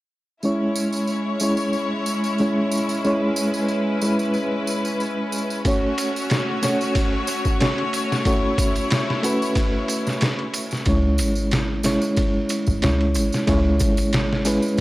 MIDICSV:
0, 0, Header, 1, 5, 480
1, 0, Start_track
1, 0, Key_signature, 4, "minor"
1, 0, Tempo, 652174
1, 319, Time_signature, 4, 2, 24, 8
1, 10898, End_track
2, 0, Start_track
2, 0, Title_t, "String section"
2, 0, Program_c, 0, 48
2, 317, Note_on_c, 0, 64, 60
2, 321, Note_on_c, 0, 56, 65
2, 322, Note_on_c, 0, 61, 57
2, 324, Note_on_c, 0, 73, 71
2, 2222, Note_off_c, 0, 73, 0
2, 2244, Note_on_c, 0, 71, 70
2, 4128, Note_off_c, 0, 64, 0
2, 4130, Note_off_c, 0, 56, 0
2, 4143, Note_off_c, 0, 71, 0
2, 4159, Note_on_c, 0, 57, 70
2, 4159, Note_on_c, 0, 66, 61
2, 4161, Note_on_c, 0, 73, 81
2, 6060, Note_off_c, 0, 66, 0
2, 6071, Note_on_c, 0, 64, 67
2, 7970, Note_off_c, 0, 57, 0
2, 7971, Note_off_c, 0, 61, 0
2, 7971, Note_off_c, 0, 73, 0
2, 7976, Note_off_c, 0, 64, 0
2, 10898, End_track
3, 0, Start_track
3, 0, Title_t, "Reed electric piano"
3, 0, Program_c, 1, 4
3, 319, Note_on_c, 1, 56, 73
3, 324, Note_on_c, 1, 61, 63
3, 328, Note_on_c, 1, 64, 60
3, 333, Note_on_c, 1, 73, 82
3, 462, Control_c, 1, 64, 127
3, 1012, Note_off_c, 1, 56, 0
3, 1015, Note_off_c, 1, 61, 0
3, 1017, Note_off_c, 1, 64, 0
3, 1020, Note_off_c, 1, 73, 0
3, 1036, Note_on_c, 1, 56, 73
3, 1041, Note_on_c, 1, 61, 68
3, 1049, Note_on_c, 1, 64, 69
3, 1052, Note_on_c, 1, 73, 82
3, 1731, Note_off_c, 1, 56, 0
3, 1734, Note_off_c, 1, 61, 0
3, 1738, Note_off_c, 1, 64, 0
3, 1739, Note_off_c, 1, 73, 0
3, 1766, Note_on_c, 1, 56, 67
3, 1766, Note_on_c, 1, 61, 61
3, 1771, Note_on_c, 1, 64, 57
3, 1774, Note_on_c, 1, 73, 75
3, 2216, Note_off_c, 1, 56, 0
3, 2216, Note_off_c, 1, 61, 0
3, 2219, Note_off_c, 1, 64, 0
3, 2220, Note_off_c, 1, 73, 0
3, 2240, Note_on_c, 1, 56, 82
3, 2242, Note_on_c, 1, 61, 72
3, 2249, Note_on_c, 1, 64, 74
3, 2257, Note_on_c, 1, 73, 90
3, 2933, Note_off_c, 1, 56, 0
3, 2934, Note_off_c, 1, 61, 0
3, 2938, Note_off_c, 1, 64, 0
3, 2941, Note_off_c, 1, 73, 0
3, 2959, Note_on_c, 1, 56, 72
3, 2965, Note_on_c, 1, 61, 62
3, 2971, Note_on_c, 1, 64, 66
3, 2979, Note_on_c, 1, 71, 83
3, 4133, Note_off_c, 1, 56, 0
3, 4136, Note_off_c, 1, 61, 0
3, 4139, Note_off_c, 1, 64, 0
3, 4142, Note_off_c, 1, 71, 0
3, 4161, Note_on_c, 1, 57, 77
3, 4164, Note_on_c, 1, 61, 70
3, 4169, Control_c, 1, 64, 0
3, 4171, Note_on_c, 1, 66, 70
3, 4178, Note_on_c, 1, 73, 90
3, 4314, Control_c, 1, 64, 127
3, 4854, Note_off_c, 1, 57, 0
3, 4855, Note_off_c, 1, 61, 0
3, 4858, Note_off_c, 1, 66, 0
3, 4862, Note_off_c, 1, 73, 0
3, 4875, Note_on_c, 1, 57, 73
3, 4879, Note_on_c, 1, 61, 70
3, 4887, Note_on_c, 1, 66, 70
3, 4892, Note_on_c, 1, 73, 87
3, 5571, Note_off_c, 1, 57, 0
3, 5572, Note_off_c, 1, 61, 0
3, 5577, Note_off_c, 1, 66, 0
3, 5579, Note_off_c, 1, 73, 0
3, 5598, Note_on_c, 1, 57, 71
3, 5601, Note_on_c, 1, 61, 66
3, 5606, Note_on_c, 1, 66, 68
3, 5607, Note_on_c, 1, 73, 76
3, 6052, Note_off_c, 1, 57, 0
3, 6054, Note_off_c, 1, 61, 0
3, 6056, Note_off_c, 1, 66, 0
3, 6057, Note_off_c, 1, 73, 0
3, 6075, Note_on_c, 1, 57, 89
3, 6080, Note_on_c, 1, 61, 78
3, 6084, Note_on_c, 1, 66, 78
3, 6090, Note_on_c, 1, 73, 99
3, 6770, Note_off_c, 1, 57, 0
3, 6773, Note_off_c, 1, 61, 0
3, 6775, Note_off_c, 1, 66, 0
3, 6778, Note_off_c, 1, 73, 0
3, 6792, Note_on_c, 1, 57, 77
3, 6798, Note_on_c, 1, 61, 72
3, 6801, Note_on_c, 1, 66, 69
3, 6811, Note_on_c, 1, 71, 82
3, 7969, Note_off_c, 1, 57, 0
3, 7972, Note_off_c, 1, 61, 0
3, 7974, Note_off_c, 1, 66, 0
3, 7979, Note_off_c, 1, 71, 0
3, 7996, Note_on_c, 1, 56, 76
3, 8002, Note_on_c, 1, 61, 71
3, 8007, Control_c, 1, 64, 0
3, 8009, Note_on_c, 1, 64, 67
3, 8013, Note_on_c, 1, 73, 85
3, 8118, Control_c, 1, 64, 127
3, 8691, Note_off_c, 1, 56, 0
3, 8694, Note_off_c, 1, 61, 0
3, 8697, Note_off_c, 1, 64, 0
3, 8700, Note_off_c, 1, 73, 0
3, 8714, Note_on_c, 1, 56, 78
3, 8720, Note_on_c, 1, 61, 72
3, 8724, Note_on_c, 1, 64, 72
3, 8728, Note_on_c, 1, 73, 87
3, 9410, Note_off_c, 1, 56, 0
3, 9413, Note_off_c, 1, 61, 0
3, 9415, Note_off_c, 1, 64, 0
3, 9417, Note_off_c, 1, 73, 0
3, 9440, Note_on_c, 1, 56, 72
3, 9441, Note_on_c, 1, 61, 66
3, 9447, Note_on_c, 1, 64, 68
3, 9448, Note_on_c, 1, 73, 81
3, 9893, Note_off_c, 1, 56, 0
3, 9894, Note_off_c, 1, 61, 0
3, 9897, Note_off_c, 1, 64, 0
3, 9897, Note_off_c, 1, 73, 0
3, 9915, Note_on_c, 1, 56, 84
3, 9922, Note_on_c, 1, 61, 81
3, 9927, Note_on_c, 1, 64, 83
3, 9933, Note_on_c, 1, 73, 95
3, 10610, Note_off_c, 1, 56, 0
3, 10614, Note_off_c, 1, 61, 0
3, 10617, Note_off_c, 1, 64, 0
3, 10620, Note_off_c, 1, 73, 0
3, 10636, Note_on_c, 1, 56, 76
3, 10637, Note_on_c, 1, 61, 72
3, 10645, Note_on_c, 1, 64, 69
3, 10651, Note_on_c, 1, 71, 80
3, 10898, Note_off_c, 1, 56, 0
3, 10898, Note_off_c, 1, 61, 0
3, 10898, Note_off_c, 1, 64, 0
3, 10898, Note_off_c, 1, 71, 0
3, 10898, End_track
4, 0, Start_track
4, 0, Title_t, "808-style bass"
4, 0, Program_c, 2, 38
4, 7998, Note_on_c, 2, 37, 94
4, 8241, Note_on_c, 2, 32, 92
4, 8252, Note_off_c, 2, 37, 0
4, 8825, Note_off_c, 2, 32, 0
4, 9333, Note_on_c, 2, 32, 98
4, 9428, Note_off_c, 2, 32, 0
4, 9447, Note_on_c, 2, 37, 76
4, 9684, Note_on_c, 2, 32, 91
4, 9695, Note_off_c, 2, 37, 0
4, 9795, Note_off_c, 2, 32, 0
4, 9923, Note_on_c, 2, 37, 98
4, 10164, Note_on_c, 2, 32, 91
4, 10175, Note_off_c, 2, 37, 0
4, 10746, Note_off_c, 2, 32, 0
4, 10898, End_track
5, 0, Start_track
5, 0, Title_t, "Drums"
5, 314, Note_on_c, 9, 54, 33
5, 388, Note_off_c, 9, 54, 0
5, 556, Note_on_c, 9, 54, 82
5, 630, Note_off_c, 9, 54, 0
5, 681, Note_on_c, 9, 54, 47
5, 754, Note_off_c, 9, 54, 0
5, 790, Note_on_c, 9, 54, 33
5, 864, Note_off_c, 9, 54, 0
5, 1028, Note_on_c, 9, 54, 81
5, 1101, Note_off_c, 9, 54, 0
5, 1155, Note_on_c, 9, 54, 53
5, 1229, Note_off_c, 9, 54, 0
5, 1272, Note_on_c, 9, 54, 31
5, 1346, Note_off_c, 9, 54, 0
5, 1517, Note_on_c, 9, 54, 85
5, 1590, Note_off_c, 9, 54, 0
5, 1647, Note_on_c, 9, 54, 44
5, 1720, Note_off_c, 9, 54, 0
5, 1753, Note_on_c, 9, 54, 31
5, 1827, Note_off_c, 9, 54, 0
5, 1998, Note_on_c, 9, 54, 82
5, 2071, Note_off_c, 9, 54, 0
5, 2127, Note_on_c, 9, 54, 48
5, 2200, Note_off_c, 9, 54, 0
5, 2241, Note_on_c, 9, 54, 35
5, 2315, Note_off_c, 9, 54, 0
5, 2474, Note_on_c, 9, 54, 90
5, 2548, Note_off_c, 9, 54, 0
5, 2603, Note_on_c, 9, 54, 47
5, 2677, Note_off_c, 9, 54, 0
5, 2711, Note_on_c, 9, 54, 36
5, 2785, Note_off_c, 9, 54, 0
5, 2955, Note_on_c, 9, 54, 78
5, 3028, Note_off_c, 9, 54, 0
5, 3085, Note_on_c, 9, 54, 49
5, 3158, Note_off_c, 9, 54, 0
5, 3192, Note_on_c, 9, 54, 35
5, 3266, Note_off_c, 9, 54, 0
5, 3439, Note_on_c, 9, 54, 82
5, 3513, Note_off_c, 9, 54, 0
5, 3568, Note_on_c, 9, 54, 51
5, 3641, Note_off_c, 9, 54, 0
5, 3681, Note_on_c, 9, 54, 38
5, 3754, Note_off_c, 9, 54, 0
5, 3917, Note_on_c, 9, 54, 75
5, 3991, Note_off_c, 9, 54, 0
5, 4050, Note_on_c, 9, 54, 45
5, 4124, Note_off_c, 9, 54, 0
5, 4158, Note_on_c, 9, 51, 78
5, 4160, Note_on_c, 9, 36, 91
5, 4161, Note_on_c, 9, 54, 38
5, 4231, Note_off_c, 9, 51, 0
5, 4233, Note_off_c, 9, 36, 0
5, 4235, Note_off_c, 9, 54, 0
5, 4400, Note_on_c, 9, 51, 63
5, 4401, Note_on_c, 9, 54, 81
5, 4473, Note_off_c, 9, 51, 0
5, 4475, Note_off_c, 9, 54, 0
5, 4536, Note_on_c, 9, 54, 53
5, 4609, Note_off_c, 9, 54, 0
5, 4636, Note_on_c, 9, 51, 71
5, 4643, Note_on_c, 9, 54, 37
5, 4647, Note_on_c, 9, 38, 104
5, 4710, Note_off_c, 9, 51, 0
5, 4716, Note_off_c, 9, 54, 0
5, 4721, Note_off_c, 9, 38, 0
5, 4877, Note_on_c, 9, 54, 80
5, 4878, Note_on_c, 9, 51, 63
5, 4889, Note_on_c, 9, 38, 46
5, 4951, Note_off_c, 9, 54, 0
5, 4952, Note_off_c, 9, 51, 0
5, 4963, Note_off_c, 9, 38, 0
5, 5011, Note_on_c, 9, 54, 46
5, 5085, Note_off_c, 9, 54, 0
5, 5115, Note_on_c, 9, 51, 77
5, 5118, Note_on_c, 9, 36, 97
5, 5120, Note_on_c, 9, 54, 36
5, 5189, Note_off_c, 9, 51, 0
5, 5191, Note_off_c, 9, 36, 0
5, 5193, Note_off_c, 9, 54, 0
5, 5353, Note_on_c, 9, 54, 90
5, 5359, Note_on_c, 9, 51, 60
5, 5426, Note_off_c, 9, 54, 0
5, 5432, Note_off_c, 9, 51, 0
5, 5482, Note_on_c, 9, 54, 46
5, 5486, Note_on_c, 9, 36, 87
5, 5555, Note_off_c, 9, 54, 0
5, 5560, Note_off_c, 9, 36, 0
5, 5597, Note_on_c, 9, 51, 77
5, 5598, Note_on_c, 9, 54, 31
5, 5608, Note_on_c, 9, 38, 100
5, 5671, Note_off_c, 9, 51, 0
5, 5672, Note_off_c, 9, 54, 0
5, 5682, Note_off_c, 9, 38, 0
5, 5727, Note_on_c, 9, 51, 39
5, 5800, Note_off_c, 9, 51, 0
5, 5837, Note_on_c, 9, 51, 59
5, 5842, Note_on_c, 9, 54, 79
5, 5911, Note_off_c, 9, 51, 0
5, 5916, Note_off_c, 9, 54, 0
5, 5978, Note_on_c, 9, 38, 54
5, 5978, Note_on_c, 9, 54, 44
5, 6052, Note_off_c, 9, 38, 0
5, 6052, Note_off_c, 9, 54, 0
5, 6074, Note_on_c, 9, 51, 81
5, 6076, Note_on_c, 9, 36, 94
5, 6081, Note_on_c, 9, 54, 41
5, 6147, Note_off_c, 9, 51, 0
5, 6150, Note_off_c, 9, 36, 0
5, 6155, Note_off_c, 9, 54, 0
5, 6315, Note_on_c, 9, 36, 92
5, 6315, Note_on_c, 9, 51, 61
5, 6318, Note_on_c, 9, 54, 83
5, 6389, Note_off_c, 9, 36, 0
5, 6389, Note_off_c, 9, 51, 0
5, 6392, Note_off_c, 9, 54, 0
5, 6444, Note_on_c, 9, 51, 39
5, 6446, Note_on_c, 9, 54, 47
5, 6517, Note_off_c, 9, 51, 0
5, 6519, Note_off_c, 9, 54, 0
5, 6554, Note_on_c, 9, 51, 77
5, 6560, Note_on_c, 9, 54, 33
5, 6565, Note_on_c, 9, 38, 100
5, 6628, Note_off_c, 9, 51, 0
5, 6634, Note_off_c, 9, 54, 0
5, 6639, Note_off_c, 9, 38, 0
5, 6700, Note_on_c, 9, 38, 55
5, 6773, Note_off_c, 9, 38, 0
5, 6795, Note_on_c, 9, 51, 66
5, 6802, Note_on_c, 9, 54, 83
5, 6869, Note_off_c, 9, 51, 0
5, 6876, Note_off_c, 9, 54, 0
5, 6933, Note_on_c, 9, 54, 50
5, 7007, Note_off_c, 9, 54, 0
5, 7032, Note_on_c, 9, 51, 81
5, 7034, Note_on_c, 9, 36, 98
5, 7042, Note_on_c, 9, 54, 37
5, 7105, Note_off_c, 9, 51, 0
5, 7108, Note_off_c, 9, 36, 0
5, 7115, Note_off_c, 9, 54, 0
5, 7274, Note_on_c, 9, 51, 59
5, 7281, Note_on_c, 9, 54, 82
5, 7348, Note_off_c, 9, 51, 0
5, 7355, Note_off_c, 9, 54, 0
5, 7408, Note_on_c, 9, 54, 51
5, 7414, Note_on_c, 9, 38, 42
5, 7482, Note_off_c, 9, 54, 0
5, 7487, Note_off_c, 9, 38, 0
5, 7513, Note_on_c, 9, 51, 80
5, 7515, Note_on_c, 9, 54, 37
5, 7524, Note_on_c, 9, 38, 106
5, 7587, Note_off_c, 9, 51, 0
5, 7589, Note_off_c, 9, 54, 0
5, 7598, Note_off_c, 9, 38, 0
5, 7646, Note_on_c, 9, 51, 39
5, 7719, Note_off_c, 9, 51, 0
5, 7754, Note_on_c, 9, 51, 60
5, 7757, Note_on_c, 9, 54, 85
5, 7828, Note_off_c, 9, 51, 0
5, 7830, Note_off_c, 9, 54, 0
5, 7881, Note_on_c, 9, 54, 48
5, 7895, Note_on_c, 9, 38, 37
5, 7955, Note_off_c, 9, 54, 0
5, 7968, Note_off_c, 9, 38, 0
5, 7988, Note_on_c, 9, 54, 36
5, 7991, Note_on_c, 9, 51, 80
5, 7995, Note_on_c, 9, 36, 97
5, 8061, Note_off_c, 9, 54, 0
5, 8064, Note_off_c, 9, 51, 0
5, 8068, Note_off_c, 9, 36, 0
5, 8229, Note_on_c, 9, 54, 88
5, 8235, Note_on_c, 9, 51, 61
5, 8302, Note_off_c, 9, 54, 0
5, 8309, Note_off_c, 9, 51, 0
5, 8356, Note_on_c, 9, 54, 46
5, 8430, Note_off_c, 9, 54, 0
5, 8473, Note_on_c, 9, 54, 37
5, 8475, Note_on_c, 9, 51, 73
5, 8486, Note_on_c, 9, 38, 105
5, 8546, Note_off_c, 9, 54, 0
5, 8549, Note_off_c, 9, 51, 0
5, 8560, Note_off_c, 9, 38, 0
5, 8709, Note_on_c, 9, 54, 91
5, 8716, Note_on_c, 9, 51, 64
5, 8727, Note_on_c, 9, 38, 47
5, 8783, Note_off_c, 9, 54, 0
5, 8790, Note_off_c, 9, 51, 0
5, 8801, Note_off_c, 9, 38, 0
5, 8843, Note_on_c, 9, 54, 54
5, 8917, Note_off_c, 9, 54, 0
5, 8952, Note_on_c, 9, 54, 42
5, 8959, Note_on_c, 9, 36, 99
5, 8959, Note_on_c, 9, 51, 85
5, 9026, Note_off_c, 9, 54, 0
5, 9032, Note_off_c, 9, 51, 0
5, 9033, Note_off_c, 9, 36, 0
5, 9193, Note_on_c, 9, 54, 81
5, 9201, Note_on_c, 9, 51, 63
5, 9267, Note_off_c, 9, 54, 0
5, 9274, Note_off_c, 9, 51, 0
5, 9321, Note_on_c, 9, 54, 48
5, 9329, Note_on_c, 9, 36, 87
5, 9395, Note_off_c, 9, 54, 0
5, 9403, Note_off_c, 9, 36, 0
5, 9437, Note_on_c, 9, 51, 80
5, 9440, Note_on_c, 9, 54, 32
5, 9448, Note_on_c, 9, 38, 100
5, 9510, Note_off_c, 9, 51, 0
5, 9514, Note_off_c, 9, 54, 0
5, 9521, Note_off_c, 9, 38, 0
5, 9573, Note_on_c, 9, 51, 39
5, 9646, Note_off_c, 9, 51, 0
5, 9675, Note_on_c, 9, 54, 91
5, 9682, Note_on_c, 9, 51, 60
5, 9748, Note_off_c, 9, 54, 0
5, 9756, Note_off_c, 9, 51, 0
5, 9806, Note_on_c, 9, 54, 49
5, 9821, Note_on_c, 9, 38, 52
5, 9880, Note_off_c, 9, 54, 0
5, 9895, Note_off_c, 9, 38, 0
5, 9917, Note_on_c, 9, 51, 77
5, 9918, Note_on_c, 9, 54, 40
5, 9920, Note_on_c, 9, 36, 102
5, 9990, Note_off_c, 9, 51, 0
5, 9991, Note_off_c, 9, 54, 0
5, 9994, Note_off_c, 9, 36, 0
5, 10153, Note_on_c, 9, 54, 92
5, 10160, Note_on_c, 9, 51, 66
5, 10161, Note_on_c, 9, 36, 85
5, 10226, Note_off_c, 9, 54, 0
5, 10234, Note_off_c, 9, 51, 0
5, 10235, Note_off_c, 9, 36, 0
5, 10284, Note_on_c, 9, 54, 56
5, 10289, Note_on_c, 9, 51, 40
5, 10357, Note_off_c, 9, 54, 0
5, 10363, Note_off_c, 9, 51, 0
5, 10396, Note_on_c, 9, 54, 34
5, 10398, Note_on_c, 9, 51, 82
5, 10409, Note_on_c, 9, 38, 109
5, 10470, Note_off_c, 9, 54, 0
5, 10471, Note_off_c, 9, 51, 0
5, 10482, Note_off_c, 9, 38, 0
5, 10544, Note_on_c, 9, 38, 54
5, 10618, Note_off_c, 9, 38, 0
5, 10634, Note_on_c, 9, 54, 80
5, 10641, Note_on_c, 9, 51, 65
5, 10707, Note_off_c, 9, 54, 0
5, 10715, Note_off_c, 9, 51, 0
5, 10763, Note_on_c, 9, 54, 51
5, 10836, Note_off_c, 9, 54, 0
5, 10875, Note_on_c, 9, 54, 39
5, 10898, Note_off_c, 9, 54, 0
5, 10898, End_track
0, 0, End_of_file